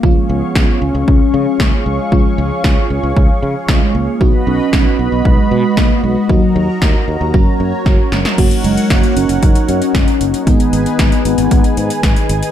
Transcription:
0.00 0.15 C#2 loud
0.00 2.08 F3 medium
0.00 2.08 G#3 medium
0.00 0.31 A#3 loud
0.00 2.08 C#4 medium
0.00 2.08 F4 medium
0.00 4.17 G#4 medium
0.00 4.17 C#5 medium
0.00 4.17 F5 medium
0.00 4.17 C#6 medium
0.00 kick medium
0.29 0.41 C#2 loud
0.29 0.81 B3 loud
0.55 0.67 C#2 loud
0.55 kick loud
0.55 snare loud
0.82 0.93 C#2 medium
0.82 1.62 C#4 loud
0.95 1.06 C#2 medium
1.08 1.19 C#2 medium
1.08 kick loud
1.34 1.45 C#3 medium
1.60 1.71 C#2 medium
1.60 1.88 A#3 loud
1.60 kick loud
1.60 snare loud
1.86 1.98 C#2 medium
1.86 2.64 G#3 medium
2.12 2.24 C#2 loud
2.12 4.17 F3 medium
2.12 4.17 G#3 medium
2.12 4.17 C#4 medium
2.12 4.17 F4 medium
2.12 kick loud
2.38 2.50 C#2 loud
2.64 2.76 C#2 loud
2.64 kick loud
2.64 snare loud
2.90 3.02 C#2 medium
3.03 3.15 C#2 medium
3.17 3.28 C#2 loud
3.17 kick loud
3.43 3.54 C#3 medium
3.68 3.80 C#2 loud
3.68 3.96 G#3 loud
3.68 kick loud
3.68 snare loud
3.95 4.06 C#2 loud
3.95 4.20 A#3 medium
4.21 4.32 B1 loud
4.21 6.25 F#3 medium
4.21 6.25 B3 medium
4.21 4.45 B3 loud
4.21 6.25 D#4 medium
4.21 6.25 F#4 medium
4.21 8.34 F#4 medium
4.21 6.27 B4 medium
4.21 7.31 D#5 medium
4.21 6.27 B5 medium
4.21 kick loud
4.47 4.58 B1 medium
4.47 5.01 C#4 loud
4.73 4.85 B1 loud
4.73 kick loud
4.73 snare loud
4.99 5.11 B1 medium
4.99 5.27 B3 loud
5.12 5.24 B1 medium
5.25 5.37 B1 loud
5.25 5.79 G#3 loud
5.25 kick loud
5.51 5.63 B2 medium
5.77 5.89 B1 medium
5.77 6.05 A#3 loud
5.77 kick loud
5.77 snare loud
6.03 6.15 B1 medium
6.03 6.29 G#3 medium
6.29 6.41 D#2 medium
6.29 7.32 F#3 medium
6.29 6.78 F#3 medium
6.29 7.32 A#3 medium
6.29 7.32 D#4 medium
6.29 7.32 F#4 medium
6.29 8.36 A#4 medium
6.29 8.36 A#5 medium
6.29 kick loud
6.56 6.67 D#2 loud
6.82 6.93 D#2 loud
6.82 kick loud
6.82 snare loud
7.08 7.19 D#2 medium
7.21 7.32 D#2 medium
7.34 7.46 F#1 loud
7.34 8.36 F#3 medium
7.34 8.36 A#3 medium
7.34 8.36 C#4 medium
7.34 8.36 F#4 medium
7.34 8.37 C#5 medium
7.34 kick loud
7.60 7.71 F#2 loud
7.86 7.98 F#1 loud
7.86 kick loud
7.86 snare medium
8.12 8.24 F#1 loud
8.12 snare medium
8.25 snare medium
8.38 8.50 F#1 loud
8.38 10.43 F#3 medium
8.38 10.43 A#3 medium
8.38 10.43 C#4 medium
8.38 12.52 D#4 medium
8.38 10.43 F#4 medium
8.38 10.45 A#4 medium
8.38 10.45 C#5 medium
8.38 10.45 F#5 medium
8.38 kick loud
8.38 closed hi-hat medium
8.38 crash medium
8.51 closed hi-hat medium
8.64 8.76 F#1 loud
8.64 8.89 G#3 medium
8.64 closed hi-hat medium
8.77 closed hi-hat soft
8.90 9.02 F#1 loud
8.90 9.18 A#3 loud
8.90 kick loud
8.90 snare loud
8.90 closed hi-hat medium
9.03 closed hi-hat soft
9.16 9.28 F#1 loud
9.16 9.44 C#4 loud
9.16 closed hi-hat medium
9.29 9.41 F#1 medium
9.29 closed hi-hat medium
9.43 9.54 F#1 loud
9.43 9.70 D#4 loud
9.43 kick loud
9.43 closed hi-hat medium
9.55 closed hi-hat medium
9.69 9.80 F#2 medium
9.69 10.46 C#4 loud
9.69 closed hi-hat medium
9.82 closed hi-hat medium
9.95 10.06 F#1 medium
9.95 kick loud
9.95 snare loud
9.95 closed hi-hat medium
10.08 closed hi-hat soft
10.21 10.32 F#1 medium
10.21 closed hi-hat medium
10.34 closed hi-hat medium
10.47 10.58 G#1 loud
10.47 12.52 D#3 medium
10.47 12.52 G#3 medium
10.47 12.52 B3 medium
10.47 11.21 B3 loud
10.47 12.52 D#4 medium
10.47 12.52 G#4 medium
10.47 12.52 B4 medium
10.47 12.52 G#5 medium
10.47 kick loud
10.47 closed hi-hat medium
10.60 closed hi-hat medium
10.73 10.85 G#1 loud
10.73 closed hi-hat medium
10.86 closed hi-hat soft
10.99 11.11 G#1 loud
10.99 kick loud
10.99 snare loud
10.99 closed hi-hat medium
11.12 closed hi-hat soft
11.25 11.37 G#1 medium
11.25 12.26 B3 loud
11.25 closed hi-hat medium
11.38 11.50 G#1 loud
11.38 closed hi-hat medium
11.51 11.63 G#1 loud
11.51 kick loud
11.51 closed hi-hat medium
11.64 closed hi-hat medium
11.77 11.89 G#2 medium
11.77 closed hi-hat medium
11.90 closed hi-hat medium
12.03 12.15 G#1 loud
12.03 kick loud
12.03 snare loud
12.03 closed hi-hat medium
12.16 closed hi-hat soft
12.29 12.41 G#1 loud
12.29 closed hi-hat medium
12.43 closed hi-hat medium

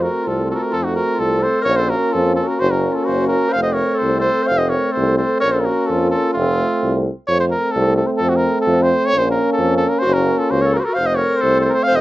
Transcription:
0.00 1.67 A3 medium
0.00 1.69 C4 medium
0.00 0.24 F#4 medium
0.00 0.29 A#4 medium
0.23 0.44 F4 medium
0.27 0.53 C2 medium
0.27 0.50 A4 medium
0.45 0.53 F4 medium
0.51 0.61 F4 medium
0.51 0.55 F#4 medium
0.51 0.56 A4 medium
0.51 0.57 A#4 medium
0.56 0.62 A4 medium
0.60 0.71 F#4 medium
0.60 0.74 A#4 medium
0.70 0.85 F4 medium
0.70 0.85 A4 loud
0.74 1.00 F2 medium
0.83 0.94 D#4 medium
0.83 0.95 F#4 medium
0.94 1.16 F#4 medium
0.94 1.21 A#4 medium
1.15 1.42 F4 medium
1.19 1.46 C2 medium
1.19 1.44 A4 medium
1.40 1.61 A4 medium
1.40 1.63 C5 medium
1.62 2.61 A#3 medium
1.62 1.80 A#4 loud
1.62 1.77 C#5 loud
1.66 1.92 A#1 loud
1.66 2.61 C#4 medium
1.76 1.90 A4 medium
1.76 1.91 C5 medium
1.89 2.12 F#4 medium
1.89 2.14 A#4 medium
2.10 2.34 F4 medium
2.10 2.35 A4 medium
2.15 2.41 F2 medium
2.34 2.45 F4 medium
2.34 2.49 A4 medium
2.43 2.56 F#4 medium
2.47 2.61 A#4 medium
2.56 2.69 F#4 medium
2.56 2.72 C5 loud
2.60 2.87 F#1 loud
2.60 3.59 A#3 medium
2.60 3.59 C#4 medium
2.69 2.94 F#4 medium
2.69 2.97 A#4 medium
2.92 3.05 F4 medium
2.92 3.07 A4 medium
3.03 3.28 F#4 medium
3.03 3.27 C5 medium
3.08 3.34 F#1 medium
3.28 3.51 F#4 medium
3.28 3.54 A#4 medium
3.49 3.62 C5 loud
3.49 3.62 F5 loud
3.55 3.81 F1 medium
3.55 5.46 A3 medium
3.55 5.45 C4 medium
3.63 3.74 C5 medium
3.63 3.76 D#5 medium
3.73 3.96 A#4 medium
3.73 3.99 C#5 medium
3.94 4.18 A4 medium
3.94 4.20 C5 medium
4.02 4.28 C2 medium
4.19 4.44 A4 medium
4.19 4.49 C5 medium
4.43 4.56 C5 loud
4.47 4.75 F1 loud
4.47 4.59 F5 loud
4.56 4.71 C5 medium
4.56 4.71 D#5 medium
4.69 4.93 A#4 medium
4.69 4.94 C#5 medium
4.91 5.17 A4 medium
4.91 5.17 C5 medium
4.97 5.23 C2 loud
5.17 5.39 A4 medium
5.17 5.40 C5 medium
5.40 5.68 A#1 medium
5.40 5.55 A#4 loud
5.40 5.53 C#5 loud
5.44 6.36 A#3 medium
5.44 6.39 C#4 medium
5.52 5.67 A4 medium
5.52 5.62 C5 medium
5.60 5.88 A#4 medium
5.66 5.92 F#4 medium
5.86 6.15 F2 medium
5.86 6.10 A4 medium
5.90 6.11 F4 medium
6.10 6.34 F4 medium
6.10 6.33 A4 medium
6.33 6.62 F1 loud
6.33 7.10 A3 medium
6.33 7.00 F4 loud
6.38 7.11 C4 medium
6.38 7.04 C4 medium
6.83 7.08 C2 medium
7.27 7.54 F2 medium
7.27 9.16 A3 medium
7.27 9.16 C4 medium
7.27 7.39 C#5 loud
7.40 7.45 C5 medium
7.51 7.73 A#4 medium
7.71 7.96 A4 medium
7.76 8.01 C2 loud
7.96 8.08 A4 medium
8.07 8.08 C5 medium
8.17 8.30 A4 loud
8.21 8.46 F2 medium
8.29 8.38 F#4 medium
8.36 8.60 A#4 medium
8.61 8.84 A4 medium
8.66 8.92 F2 loud
8.83 9.07 C5 medium
9.06 9.20 C#5 loud
9.13 9.39 A#1 medium
9.13 10.06 A#3 medium
9.13 10.06 C#4 medium
9.18 9.30 C5 medium
9.30 9.52 A#4 medium
9.52 9.77 A4 medium
9.58 9.84 F2 loud
9.77 9.90 A4 medium
9.88 10.00 A#4 medium
9.99 10.13 F#4 loud
9.99 10.15 C5 loud
10.05 10.30 F#1 loud
10.05 10.78 C#4 medium
10.09 10.80 A#3 medium
10.13 10.41 F#4 medium
10.13 10.40 A#4 medium
10.38 10.51 F4 medium
10.38 10.52 A4 medium
10.49 10.77 C#2 loud
10.49 10.63 F#4 medium
10.49 10.63 C5 medium
10.61 10.67 A#4 medium
10.61 10.75 C#5 medium
10.66 10.79 A4 medium
10.74 10.87 F#4 medium
10.74 10.81 A#4 medium
10.80 10.95 A#4 medium
10.80 10.85 C5 medium
10.86 10.97 F#4 medium
10.86 10.90 A4 medium
10.94 11.23 F1 medium
10.94 11.10 C5 loud
10.94 11.08 F5 loud
10.98 12.01 A3 medium
10.98 12.01 C4 medium
11.06 11.19 C5 medium
11.06 11.16 D#5 medium
11.15 11.42 A#4 loud
11.15 11.38 C#5 medium
11.36 11.60 C5 loud
11.41 11.68 C2 loud
11.41 11.64 A4 loud
11.61 11.71 C5 medium
11.65 11.73 A4 medium
11.69 11.73 A#4 medium
11.69 11.85 C5 loud
11.73 11.76 A4 medium
11.83 11.97 F5 loud
11.87 12.01 F1 medium
11.87 12.00 C5 loud
11.95 12.01 D#5 loud

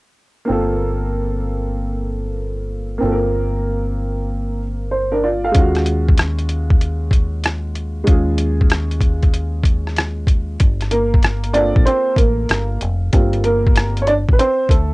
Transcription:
0.45 2.96 A#3 medium
0.45 2.97 C4 medium
0.49 2.98 G1 medium
0.49 2.98 F4 medium
0.49 2.99 A4 medium
2.98 5.49 A#3 medium
2.98 5.50 C4 medium
3.02 5.51 G1 medium
3.02 4.57 F4 medium
3.02 3.12 A4 medium
3.12 4.62 A#4 medium
4.91 5.11 C5 medium
5.12 5.23 D4 medium
5.12 5.22 A#4 medium
5.23 5.43 F4 medium
5.23 5.43 D5 medium
5.44 5.74 A4 soft
5.44 5.74 F5 medium
5.51 8.03 D#2 medium
5.51 8.02 G#3 medium
5.51 8.03 C#4 medium
5.51 kick medium
5.51 closed hi-hat medium
5.56 8.04 F4 medium
5.56 8.05 F#4 medium
5.75 cross-stick soft
5.75 closed hi-hat soft
5.86 closed hi-hat medium
6.08 kick medium
6.18 cross-stick medium
6.18 closed hi-hat medium
6.39 closed hi-hat soft
6.49 closed hi-hat medium
6.70 kick medium
6.81 closed hi-hat medium
7.11 kick medium
7.11 closed hi-hat medium
7.44 cross-stick medium
7.44 closed hi-hat medium
7.75 closed hi-hat medium
8.04 10.56 D#2 medium
8.04 10.54 G#3 medium
8.04 10.55 C#4 medium
8.04 kick loud
8.04 closed hi-hat medium
8.09 10.57 F4 medium
8.09 10.58 G#4 medium
8.38 closed hi-hat medium
8.61 kick medium
8.70 cross-stick medium
8.70 closed hi-hat medium
8.91 closed hi-hat soft
9.01 kick medium
9.01 closed hi-hat medium
9.23 kick medium
9.23 closed hi-hat soft
9.34 closed hi-hat medium
9.63 kick medium
9.63 closed hi-hat medium
9.87 cross-stick soft
9.96 cross-stick medium
9.96 closed hi-hat medium
10.27 kick medium
10.27 closed hi-hat medium
10.60 11.71 G1 medium
10.60 kick loud
10.60 closed hi-hat medium
10.81 cross-stick soft
10.81 closed hi-hat soft
10.91 11.51 A#3 medium
10.91 11.50 A#4 medium
10.91 closed hi-hat medium
11.14 kick medium
11.23 cross-stick loud
11.23 closed hi-hat medium
11.44 closed hi-hat soft
11.53 12.17 A#3 soft
11.53 11.86 C4 soft
11.53 11.85 D4 medium
11.53 13.12 F4 medium
11.53 14.03 A4 medium
11.53 11.87 D5 medium
11.53 closed hi-hat medium
11.76 11.85 A#1 medium
11.76 kick medium
11.85 12.16 C4 medium
11.85 12.15 C5 medium
11.85 closed hi-hat medium
12.16 12.44 A1 medium
12.16 12.77 A#3 medium
12.16 12.76 A#4 medium
12.16 kick medium
12.16 closed hi-hat medium
12.49 12.77 G1 medium
12.49 cross-stick medium
12.49 closed hi-hat medium
12.81 13.09 F1 medium
12.81 closed hi-hat medium
13.12 14.24 G1 medium
13.12 14.03 G3 medium
13.12 13.44 A#3 soft
13.12 14.04 C4 soft
13.12 14.04 F4 medium
13.12 kick loud
13.12 closed hi-hat medium
13.33 closed hi-hat soft
13.44 13.99 A#3 medium
13.44 13.98 A#4 medium
13.44 closed hi-hat medium
13.67 kick medium
13.76 cross-stick medium
13.76 closed hi-hat medium
13.97 closed hi-hat soft
14.02 14.07 C#5 medium
14.07 14.15 D4 medium
14.07 14.13 D5 medium
14.07 closed hi-hat medium
14.29 14.38 A1 medium
14.29 14.38 B4 medium
14.29 kick medium
14.39 14.69 C4 medium
14.39 14.71 C5 medium
14.39 closed hi-hat medium
14.69 14.94 D2 medium
14.69 14.94 A3 medium
14.69 14.94 A4 medium
14.69 kick medium
14.69 closed hi-hat medium

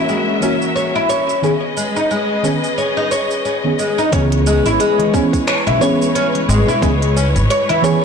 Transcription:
0.00 0.38 E3 medium
0.00 0.38 A#3 medium
0.00 0.39 C#4 medium
0.00 4.09 C#4 medium
0.00 0.39 F#4 medium
0.00 1.41 F#4 medium
0.00 1.41 A#4 medium
0.00 1.41 E5 medium
0.09 0.41 G#3 medium
0.09 cabasa soft
0.40 1.39 E3 medium
0.40 1.39 A#3 medium
0.40 0.53 C#4 medium
0.40 1.40 C#4 medium
0.40 1.41 F#4 medium
0.40 cabasa medium
0.62 cabasa soft
0.76 0.94 C#5 medium
0.76 cabasa soft
0.95 1.09 E4 medium
1.09 1.42 C#5 loud
1.09 cabasa medium
1.29 cabasa soft
1.42 1.53 D#3 medium
1.42 1.53 B3 medium
1.42 1.54 C#4 medium
1.42 1.53 C#4 medium
1.42 4.09 G#4 medium
1.42 1.54 G#4 medium
1.42 4.09 B4 medium
1.42 4.10 D#5 medium
1.42 cabasa soft
1.77 1.95 G#3 medium
1.77 cabasa medium
1.96 2.09 D#4 medium
1.96 cabasa soft
2.11 2.43 G#3 medium
2.11 cabasa soft
2.43 2.60 D#3 medium
2.43 2.60 B3 medium
2.43 2.60 C#4 medium
2.43 2.55 C#4 medium
2.43 2.61 G#4 loud
2.43 cabasa medium
2.64 cabasa soft
2.78 2.96 C#5 medium
2.78 cabasa soft
2.97 3.11 D#4 medium
3.11 3.44 C#5 medium
3.11 cabasa medium
3.31 cabasa soft
3.45 3.56 C#4 medium
3.45 cabasa soft
3.64 3.72 D#3 medium
3.64 3.72 B3 medium
3.64 3.73 C#4 medium
3.64 3.73 G#4 medium
3.79 3.98 G#3 medium
3.79 cabasa medium
3.98 4.11 D#4 medium
3.98 cabasa soft
4.11 4.66 C#2 loud
4.11 5.10 E3 medium
4.11 8.05 G#3 medium
4.11 5.10 B3 medium
4.11 4.24 C#4 medium
4.11 5.11 C#4 medium
4.11 8.05 E4 medium
4.11 5.12 G#4 medium
4.11 8.05 B4 medium
4.11 8.05 C#5 medium
4.11 kick loud
4.11 closed hi-hat medium
4.11 muted conga soft
4.11 cabasa soft
4.32 closed hi-hat soft
4.47 4.65 G#3 medium
4.47 cabasa medium
4.66 4.76 G#1 medium
4.66 4.79 E4 medium
4.66 closed hi-hat soft
4.66 muted conga medium
4.66 cabasa soft
4.80 5.12 G#3 medium
4.80 closed hi-hat medium
4.80 cabasa soft
4.99 closed hi-hat soft
4.99 high conga medium
5.13 5.78 E3 medium
5.13 5.78 B3 medium
5.13 5.25 C#4 medium
5.13 5.78 C#4 medium
5.13 5.79 G#4 medium
5.13 kick loud
5.13 high conga medium
5.13 cabasa medium
5.33 kick medium
5.33 closed hi-hat soft
5.33 cabasa soft
5.47 5.66 C#5 medium
5.47 finger snap medium
5.47 closed hi-hat medium
5.47 cabasa soft
5.67 5.77 B1 medium
5.67 5.81 E4 loud
5.67 closed hi-hat soft
5.79 6.78 E3 medium
5.79 6.79 B3 medium
5.79 6.79 C#4 medium
5.79 6.14 C#5 loud
5.79 cabasa medium
5.83 6.80 G#4 loud
6.02 cabasa soft
6.15 6.26 C#4 medium
6.15 closed hi-hat medium
6.15 cabasa soft
6.35 closed hi-hat soft
6.35 muted conga soft
6.49 6.62 G#1 loud
6.49 6.67 G#3 medium
6.49 cabasa medium
6.67 6.81 E4 medium
6.67 low conga medium
6.67 cabasa soft
6.81 7.37 C#2 medium
6.81 6.92 E3 medium
6.81 7.15 G#3 medium
6.81 6.92 B3 medium
6.81 6.93 C#4 medium
6.81 6.93 G#4 loud
6.81 kick loud
6.81 closed hi-hat medium
6.81 muted conga medium
6.81 cabasa soft
7.02 closed hi-hat soft
7.16 7.27 C#4 medium
7.16 cabasa medium
7.36 7.45 G#1 medium
7.36 closed hi-hat soft
7.36 muted conga soft
7.36 cabasa soft
7.50 7.69 C#5 loud
7.50 closed hi-hat medium
7.50 cabasa soft
7.69 7.83 E4 loud
7.69 closed hi-hat soft
7.69 high conga medium
7.82 7.99 E3 medium
7.82 7.99 B3 medium
7.82 7.99 C#4 medium
7.82 8.00 G#4 loud
7.82 8.05 C#5 medium
7.82 high conga medium
7.82 cabasa medium

